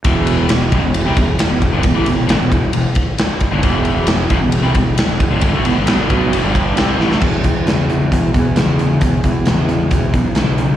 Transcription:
<<
  \new Staff \with { instrumentName = "Overdriven electric guitar" } { \clef bass \time 4/4 \key e \dorian \tempo 4 = 134 <e, b, e>4 <e, b,>8 <fis, cis>16 <e, b,>8 <c g>16 <e, b,>8 r16 <e, b,>8 <g, d>16 | <e, b,>16 <a, e>16 <e, b,>16 <e, b,>16 <g, d>16 <e, b,>8 r16 <e, b,>16 r4. <g, d>16 | <e, b, e>4 <e, b,>8 <fis, cis>16 <e, b,>8 <c g>16 <e, b,>8 r16 <e, b,>8 <g, d>16 | <g, d>16 <d a>16 <e, b,>16 <g, d>16 <b, fis>16 <g, d>16 <b, fis b>8 <fis, cis>16 <g, d g>8. <c g c'>8 <a, e>16 <d a>16 |
<e, b,>8 <e, b,>8 <e, cis>8 <e, cis>8 <e, b,>8 <e, b,>8 <e, cis>8 <e, cis>8 | <e, b,>8 <e, b,>8 <e, cis>8 <e, cis>8 <e, b,>8 <e, b,>8 <e, cis>8 <e, cis>8 | }
  \new Staff \with { instrumentName = "Overdriven electric guitar" } { \clef bass \time 4/4 \key e \dorian <e, b, e>4 <e, b,>8 <fis, cis>16 <e, b,>8 <c g>16 <e, b,>8 r16 <e, b,>8 <g, d>16 | <e, b,>16 <a, e>16 <e, b,>16 <e, b,>16 <g, d>16 <e, b,>8 r16 <e, b,>16 r4. <g, d>16 | <e, b, e>4 <e, b,>8 <fis, cis>16 <e, b,>8 <c g>16 <e, b,>8 r16 <e, b,>8 <g, d>16 | <g, d>16 <d a>16 <e, b,>16 <g, d>16 <b, fis>16 <g, d>16 <b, fis b>8 <fis, cis>16 <g, d g>8. <c g c'>8 <a, e>16 <d a>16 |
<e, b,>8 <e, b,>8 <e, cis>8 <e, cis>8 <e, b,>8 <e, b,>8 <e, cis>8 <e, cis>8 | <e, b,>8 <e, b,>8 <e, cis>8 <e, cis>8 <e, b,>8 <e, b,>8 <e, cis>8 <e, cis>8 | }
  \new Staff \with { instrumentName = "Fingered electric bass" } { \clef bass \time 4/4 \key e \dorian e,,4 e,,8 fis,,16 e,,8 c,16 e,,8 r16 e,,8 g,,16 | e,,16 a,,16 e,,16 e,,16 g,,16 e,,8 r16 e,,16 r4. g,,16 | e,,4 e,,8 fis,,16 e,,8 c,16 e,,8 r16 e,,8 g,,16 | g,,16 d,16 e,,16 g,,16 b,,16 g,,16 b,,8 fis,,16 g,,8. c,8 a,,16 d,16 |
e,8 e,4. e,8 e,4. | e,8 e,4. e,8 b,,4. | }
  \new DrumStaff \with { instrumentName = "Drums" } \drummode { \time 4/4 <bd cymr>8 cymr8 <cymr sn>8 <bd cymr>8 cymr8 <bd cymr>8 <cymr sn>8 <bd cymr>8 | <bd cymr>8 cymr8 <cymr sn>8 <bd cymr>8 cymr8 <bd cymr>8 <cymr sn>8 <bd cymr>8 | <bd cymr>8 cymr8 <cymr sn>8 <bd cymr>8 cymr8 <bd cymr>8 <cymr sn>8 <bd cymr>8 | <bd cymr>8 cymr8 <cymr sn>8 <bd cymr>8 cymr8 <bd cymr>8 <cymr sn>8 sn16 sn16 |
<cymc bd>8 <hh bd>8 <hh sn>8 hh8 <hh bd>8 <hh bd>8 <hh sn>8 hh8 | <hh bd>8 <hh bd>8 <hh sn>8 hh8 <hh bd>8 <hh bd>8 <hh sn>8 hh8 | }
>>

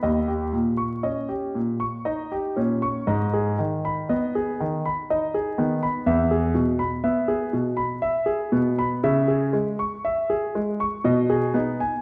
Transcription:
<<
  \new Staff \with { instrumentName = "Grand piano" } { \time 3/4 \key e \lydian \tempo 4 = 60 dis''16 g'16 ais,16 cis'''16 dis''16 g'16 ais,16 cis'''16 dis''16 g'16 ais,16 cis'''16 | dis''16 gis'16 dis16 b''16 dis''16 gis'16 dis16 b''16 dis''16 gis'16 dis16 b''16 | e''16 gis'16 r16 b''16 e''16 gis'16 b,16 b''16 e''16 gis'16 b,16 b''16 | \key cis \minor e''16 gis'16 r16 cis'''16 e''16 gis'16 gis16 cis'''16 dis''16 gis'16 b16 gis''16 | }
  \new Staff \with { instrumentName = "Grand piano" } { \time 3/4 \key e \lydian dis,8 r8 cis'8 r8 dis'8 cis'8 | gis,8 r8 b8 r8 dis'8 b8 | e,8 b,8 b8 r4 b8 | \key cis \minor cis8 gis8 r4 b,8 dis'8 | }
>>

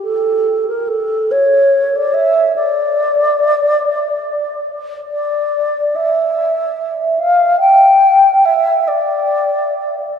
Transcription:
\new Staff \with { instrumentName = "Alto flute" } { \time 6/8 \key d \minor \tempo 4. = 47 a'8. bes'16 a'8 cis''8. d''16 e''8 | d''2~ d''8 r8 | d''4 e''4. f''8 | g''4 e''8 d''4. | }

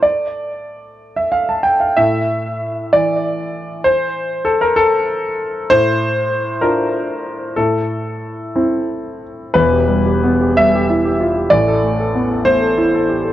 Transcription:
\new Staff \with { instrumentName = "Grand piano" } { \time 6/8 \key a \phrygian \tempo 4. = 63 << { d''4.~ d''16 e''16 f''16 a''16 g''16 f''16 | e''4. d''4. | c''4 a'16 bes'16 a'4. | c''4. bes'4. |
a'2~ a'8 r8 | \key e \phrygian b'4. e''4. | d''4. c''4. | } \\ { a2. | a,4. e4.~ | e2. | a,4. <d' f'>4. |
a,4. <c' e'>4. | <e,, e,>16 g'16 g16 g'16 b16 g'16 g16 g'16 e'16 g'16 f'16 g'16 | <a,, a,>16 a'16 a16 a'16 b16 a'16 a16 a'16 e'16 a'16 g'16 a'16 | } >> }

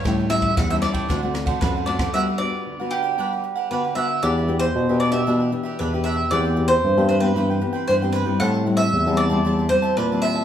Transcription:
<<
  \new Staff \with { instrumentName = "Mandolin" } { \time 4/4 \key g \major \tempo 4 = 115 cis''8 e''8 fis''16 e''16 d''4. b'8 d''8 | e''8 d''4 g'4. b'8 e''8 | \key e \minor d''8. c''8. d''16 e''4~ e''16 b'8 e''8 | d''8. c''8. c''16 b'4~ b'16 c''8 b'8 |
fis''8. e''8. d''4 c''8 b'8 e''8 | }
  \new Staff \with { instrumentName = "Cavaquinho" } { \time 4/4 \key g \major <e' a' cis'' g''>16 <a' cis'' g''>16 r8. <a' cis'' g''>16 <e' a' cis'' g''>16 <a' cis'' g''>16 <d' a' c'' fis''>16 <a' c'' fis''>16 r16 <a' c'' fis''>16 <d' a' c'' fis''>16 <a' c'' fis''>16 <d' a' c'' fis''>16 <a' c'' fis''>16 | <d' g' b' fis''>16 <g' b' fis''>16 r8. <g' b' fis''>16 <d' g' b' fis''>16 <g' b' fis''>16 <d' g' b' fis''>16 <g' b' fis''>16 r16 <g' b' fis''>16 <d' g' b' fis''>16 <g' b' fis''>16 <d' g' b' fis''>16 <g' fis''>16 | \key e \minor <d' g' b' e''>16 <g' b' e''>16 r8. <g' b' e''>16 <d' g' b' e''>16 <g' b' e''>16 <d' g' b' e''>16 <g' b' e''>16 r16 <g' b' e''>16 <d' g' b' e''>16 <g' b' e''>16 <d' g' b' e''>16 <g' b' e''>16 | <e' b' c'' g''>16 <b' c'' g''>16 r8. <b' c'' g''>16 <e' b' c'' g''>16 <b' c'' g''>16 <e' b' c'' g''>16 <b' c'' g''>16 r16 <b' c'' g''>16 <e' b' c'' g''>16 <b' c'' g''>16 <e' b' c'' g''>16 <b' c'' g''>16 |
<g' c'' e'' a''>16 <c'' e'' a''>16 r8. <c'' e'' a''>16 <g' c'' e'' a''>16 <c'' e'' a''>16 <g' c'' e'' a''>16 <c'' e'' a''>16 r16 <c'' e'' a''>16 <g' c'' e'' a''>16 <c'' e'' a''>16 <g' c'' e'' a''>16 <c'' e'' a''>16 | }
  \new Staff \with { instrumentName = "Nylon-string guitar" } { \time 4/4 \key g \major << { <g cis' e'>8 <g cis' e'>8. <g cis' e'>8. <a c' fis'>16 <a c' fis'>8. <a c' fis'>8 <a c' fis'>16 r16 | <b d' fis'>16 r16 <b d' fis'>8. <b d' fis'>8. <b d'>4 <b d' fis'>8 <b d' fis'>8 | \key e \minor <b d' g'>16 r16 <b d' g'>8. <b d' g'>8 <b d' g'>16 <b d' g'>8 <b d' g'>8. <b d' g'>8. | <b c' g'>16 r16 <b c' g'>8. <b c' g'>8 <b c' g'>16 <b c' g'>8 <b c' g'>8 r16 <b c' g'>8 <g c' e'>16~ |
<g c' e'>8 <g c' e'>8. <g c' e'>8 <g c' e'>16 <g c' e'>16 r16 <g c' e'>8. <g c' e'>8. | } \\ { a,4 e4 d4 a,4 | g4 d4 g4 d4 | e4 b,4 e4 b,4 | e4 e4 e4 e4 |
a,4 e4 a,4 e4 | } >> }
  \new Staff \with { instrumentName = "Tine electric piano" } { \clef bass \time 4/4 \key g \major a,4 e,8 r8 d,4 fis,4 | r1 | \key e \minor e,4 b,16 b,8. b,8 r8 e,4 | e,4 g,16 g,8. g,8 r8 g,4 |
a,4 e,16 e,8. e,8 r8 ais,4 | }
  \new DrumStaff \with { instrumentName = "Drums" } \drummode { \time 4/4 <bd cymr ss>8 <cymr ss>16 <bd cymr>16 <bd cymr ss>8 <cymr ss>16 <bd cymr>16 <bd cymr ss>8 <cymr ss>16 <bd cymr>16 <bd cymr ss>8 cymr16 <bd cymr ss>16 | r4 r4 r4 r4 | r4 r4 r4 r4 | r4 r4 r4 r4 |
r4 r4 r4 r4 | }
>>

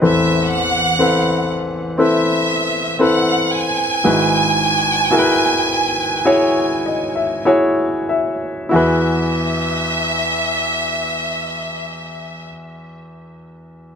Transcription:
<<
  \new Staff \with { instrumentName = "Violin section" } { \time 4/4 \key e \major \tempo 4 = 52 e''8 fis''4 r8 e''4 fis''8 gis''8~ | gis''2. r4 | e''1 | }
  \new Staff \with { instrumentName = "Grand piano" } { \time 4/4 \key e \major << { r1 | r2 r8 dis''16 e''16 gis''8 e''8 | r1 | } \\ { <c' e' a' b'>4 <c' e' a' b'>4 <c' e' a' b'>4 <c' e' a' b'>4 | <e' fis' gis' b'>4 <e' fis' gis' ais' b'>4 <e' fis' gis' cis''>4 <e' fis' gis' cis''>4 | <e' fis' gis' b'>1 | } >> }
  \new Staff \with { instrumentName = "Grand piano" } { \clef bass \time 4/4 \key e \major <a,, e,>1 | <gis,, gis,>1 | e,1 | }
>>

